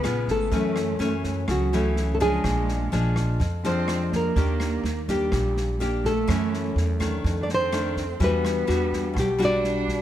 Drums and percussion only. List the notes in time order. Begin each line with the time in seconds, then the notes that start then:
0.04 cross-stick, snare
0.28 kick, snare
0.51 kick, snare
0.76 cross-stick, snare
1.00 snare
1.24 kick, snare
1.48 kick, cross-stick, snare
1.73 snare
1.96 snare
2.20 kick, snare
2.44 kick, cross-stick, snare
2.68 snare
2.92 snare
3.16 kick, cross-stick, snare
3.40 kick, snare
3.64 snare
3.88 cross-stick, snare
4.12 kick, snare
4.36 kick, snare
4.60 cross-stick, snare
4.84 snare
5.08 kick, snare
5.32 kick, cross-stick, snare
5.57 snare
5.81 snare
6.04 kick, snare
6.28 kick, cross-stick, snare
6.53 snare
6.77 snare
7.00 kick, cross-stick, snare
7.25 kick, snare
7.49 snare
7.73 cross-stick, snare
7.96 kick, snare
8.20 kick, snare
8.45 cross-stick, snare
8.69 snare
8.92 kick, snare
9.16 kick, cross-stick, snare
9.41 snare
9.64 snare
9.88 kick, snare